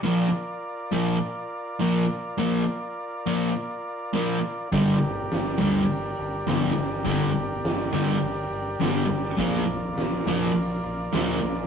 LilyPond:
<<
  \new Staff \with { instrumentName = "Transistor combo organ" } { \time 4/4 \key bes \major \tempo 4 = 103 <f' bes' d''>1~ | <f' bes' d''>1 | <g' bes' d''>1~ | <g' bes' d''>1 |
<f' bes' d''>1 | }
  \new Staff \with { instrumentName = "Distorted electric guitar" } { \clef bass \time 4/4 \key bes \major <bes, f bes>8 r4 <bes, f bes>8 r4 <bes, f bes>8 r8 | <bes, f bes>8 r4 <bes, f bes>8 r4 <bes, f bes>8 r8 | <g, d g>8 r4 <g, d g>8 r4 <g, d g>8 r8 | <g, d g>8 r4 <g, d g>8 r4 <g, d g>8 r8 |
<bes, f bes>8 r4 <bes, f bes>8 r4 <bes, f bes>8 r8 | }
  \new Staff \with { instrumentName = "Picked electric bass" } { \clef bass \time 4/4 \key bes \major r1 | r1 | g,,8 g,,8 g,,8 d,8 g,,8 g,,8 bes,,8 g,,8 | g,,8 g,,8 g,,8 g,8 g,,8 g,,8 g,,8 g,,8 |
bes,,8 bes,,8 bes,,8 f,,8 bes,,8 bes,,8 d,8 bes,,8 | }
  \new DrumStaff \with { instrumentName = "Drums" } \drummode { \time 4/4 r4 r4 r4 r4 | r4 r4 r4 r4 | <hho bd>4 <hho sn>4 hho4 <hho sn>4 | <hho bd>4 <hho sn>4 hho4 <hho sn>4 |
<hho bd>4 <hho sn>4 hho4 <hho sn>4 | }
>>